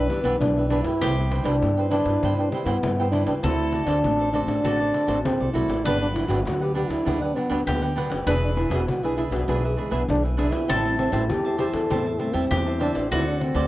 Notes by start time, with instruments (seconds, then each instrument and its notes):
Already playing: nylon-string guitar G2, trombone D4, mandolin B4, cavaquinho E5
0.00 cavaquinho B4
0.09 nylon-string guitar E3 B3 D4, trombone G3, cavaquinho D4 G4 B4 E5, pandeiro
0.22 upright bass B1, nylon-string guitar E3 B3 D4, trombone B3, cavaquinho D4 G4 B4 E5, pandeiro
0.39 upright bass B1, nylon-string guitar G2, trombone D4, pandeiro
0.57 cavaquinho G4 B4 E5, pandeiro
0.69 nylon-string guitar E3 B3 D4, trombone D4, cavaquinho D4 G4 B4 E5, pandeiro
0.83 upright bass G2, trombone E4, cavaquinho G4 B4 E5, pandeiro
1.01 upright bass C2, nylon-string guitar C3 G3 B3 E4, cavaquinho E4 B4 C5 G5, mandolin G4, pandeiro
1.18 nylon-string guitar G3 B3 E4, pandeiro
1.30 cavaquinho E4 B4 C5 G5, pandeiro
1.44 upright bass C2, trombone D4, cavaquinho E4 B4 C5 G5, pandeiro
1.62 upright bass G2, nylon-string guitar G2 G3 B3 E4, pandeiro
1.77 cavaquinho B4 C5 G5, pandeiro
1.90 nylon-string guitar G3 B3 E4, trombone D4, cavaquinho E4 B4 C5 G5, pandeiro
2.05 upright bass G2, pandeiro
2.23 upright bass G2, nylon-string guitar C3 G3 B3 E4, cavaquinho E4 B4 C5 G5, pandeiro
2.37 trombone D4, cavaquinho B4 C5 G5, pandeiro
2.50 trombone G3, nylon-string guitar G3 B3 E4, cavaquinho E4 B4 C5, pandeiro
2.54 cavaquinho G5
2.65 upright bass G2, trombone B3, cavaquinho E4 B4 C5 G5, pandeiro
2.83 nylon-string guitar G2, upright bass G2, pandeiro
2.99 nylon-string guitar G3 B3 E4, cavaquinho B4 C5 G5, pandeiro
3.11 trombone D4, cavaquinho E4 B4 C5 G5, pandeiro
3.26 upright bass C#2, trombone D4, cavaquinho B4 C5 G5, pandeiro
3.43 upright bass D2, nylon-string guitar D3 A3 C4 F#4, trombone E4, cavaquinho F#4 A4 C5 D5, mandolin A4, pandeiro
3.59 pandeiro
3.72 cavaquinho F#4 A4 C5 D5, pandeiro
3.86 upright bass D2, trombone D4, cavaquinho F#4 A4 C5 D5, pandeiro
4.04 upright bass A1, nylon-string guitar A2 A3 C4 F#4, pandeiro
4.19 cavaquinho A4 C5 D5, pandeiro
4.32 nylon-string guitar A3 C4 F#4, trombone D4, cavaquinho F#4 A4 C5 D5, pandeiro
4.47 upright bass A1, trombone D4, pandeiro
4.64 upright bass A1, nylon-string guitar D3 A3 C4 F#4, cavaquinho F#4 A4 C5 D5, mandolin A4, pandeiro
4.80 cavaquinho A4 C5 D5, pandeiro
4.94 cavaquinho F#4 A4 C5 D5, pandeiro
5.07 upright bass A1, nylon-string guitar A3 C4 F#4, cavaquinho F#4 A4 C5 D5, pandeiro
5.24 upright bass D2, nylon-string guitar A2, trombone C4, pandeiro
5.40 upright bass C2, cavaquinho A4 C5 D5, pandeiro
5.53 upright bass B1, nylon-string guitar A3 C4 F#4, trombone E4, cavaquinho F#4 A4 C5 D5, pandeiro
5.68 upright bass A1, cavaquinho A4 C5 D5, pandeiro
5.85 upright bass G1, nylon-string guitar G2 F#3 B3 D4, trombone D4, cavaquinho D4 G4 B4 F#5, mandolin B4, pandeiro
6.01 nylon-string guitar F#3 B3 D4, trombone D4, pandeiro
6.14 cavaquinho D4 G4 B4 F#5, trombone E4, pandeiro
6.28 upright bass G1, cavaquinho D4 G4 B4 F#5, trombone F#4, pandeiro
6.45 upright bass D2, nylon-string guitar D3 F#3 B3 D4, trombone F#4, pandeiro
6.61 trombone G4, cavaquinho G4 B4 F#5, pandeiro
6.75 cavaquinho D4 G4 B4 F#5, trombone G4, pandeiro
6.89 upright bass D2, trombone E4, pandeiro
7.05 upright bass D2, nylon-string guitar G2 F#3 B3 D4, cavaquinho D4 G4 B4 F#5, pandeiro
7.22 trombone D4, cavaquinho G4 B4 F#5, pandeiro
7.35 nylon-string guitar F#3 B3 D4, trombone B3, cavaquinho D4 G4 B4 F#5, pandeiro
7.49 upright bass D2, nylon-string guitar F#3 B3 D4, cavaquinho D4 G4 B4 F#5, pandeiro
7.67 upright bass D2, nylon-string guitar D3, trombone B3, mandolin G4, pandeiro
7.82 cavaquinho G4 B4 F#5, pandeiro
7.95 nylon-string guitar F#3 B3 D4, cavaquinho D4 G4 B4 F#5, pandeiro
8.10 upright bass F#1, cavaquinho G4 B4 F#5, pandeiro
8.27 upright bass E1, nylon-string guitar E3 B3 D4 G#4, cavaquinho D4 G#4 B4 E5, trombone D4, mandolin B4, pandeiro
8.44 trombone D4, pandeiro
8.56 nylon-string guitar B3 D4 G#4, cavaquinho D4 G#4 B4 E5, trombone E4, pandeiro
8.70 upright bass E1, cavaquinho D4 G#4 B4 E5, trombone F#4, pandeiro
8.87 upright bass B1, nylon-string guitar B2, trombone F#4, pandeiro
9.03 nylon-string guitar B3 D4 G#4, trombone E4, cavaquinho G#4 B4 E5, pandeiro
9.17 cavaquinho D4 G#4 B4 E5, trombone E4, pandeiro
9.31 upright bass B1, nylon-string guitar B3 D4 G#4, trombone F#4, pandeiro
9.48 upright bass B1, nylon-string guitar E3 B3 D4 G#4, cavaquinho D4 G#4 B4 E5, pandeiro
9.64 trombone G#4, cavaquinho G#4 B4 E5, pandeiro
9.77 trombone G#3, cavaquinho D4 G#4 B4 E5, pandeiro
9.90 upright bass B1, nylon-string guitar B3 D4 G#4, trombone B3, cavaquinho D4 G#4 B4 E5, pandeiro
10.08 upright bass B1, nylon-string guitar B2, trombone D4, pandeiro
10.23 cavaquinho G#4 B4 E5, pandeiro
10.37 nylon-string guitar B3 D4 G#4, cavaquinho D4 G#4 B4 E5, trombone D4, pandeiro
10.51 upright bass E2, trombone E4, cavaquinho G#4 B4 E5, pandeiro
10.68 upright bass A1, nylon-string guitar A2 G3 C4 E4, cavaquinho G4 C5 E5 A5, mandolin A4, pandeiro
10.85 nylon-string guitar G3 C4 E4, pandeiro
10.98 trombone C4, cavaquinho G4 C5 E5 A5, pandeiro
11.12 upright bass A1, trombone E4, cavaquinho G4 C5 E5 A5, pandeiro
11.30 upright bass E2, nylon-string guitar E3 G3 C4 E4, trombone G4, pandeiro
11.45 cavaquinho C5 E5 A5, pandeiro
11.58 cavaquinho G4 C5 E5 A5, trombone G4, pandeiro
11.73 upright bass E2, trombone A4, pandeiro
11.90 upright bass E2, nylon-string guitar A2 G3 C4 E4, cavaquinho G4 C5 E5 A5, pandeiro
12.06 cavaquinho C5 E5 A5, pandeiro
12.19 nylon-string guitar G3 C4 E4, trombone A3, cavaquinho G4 C5 E5 A5, pandeiro
12.33 upright bass E2, nylon-string guitar G3 C4 E4, trombone C4, cavaquinho G4 C5 E5 A5, pandeiro
12.51 upright bass E2, nylon-string guitar E3, mandolin G4, pandeiro
12.66 cavaquinho C5 E5 A5, pandeiro
12.80 nylon-string guitar G3 C4 E4, trombone D4, cavaquinho G4 C5 E5 A5, pandeiro
12.94 upright bass A1, trombone D4, cavaquinho C5 E5 A5, pandeiro
13.11 upright bass D2, nylon-string guitar D3 A3 C4 F#4, trombone E4, cavaquinho F#4 A4 C5 D5, mandolin F#4, pandeiro
13.27 trombone D4, pandeiro
13.40 trombone C4, cavaquinho F#4 A4 C5 D5, pandeiro
13.54 upright bass D2, nylon-string guitar A3 C4 F#4, cavaquinho F#4 A4 C5 D5, pandeiro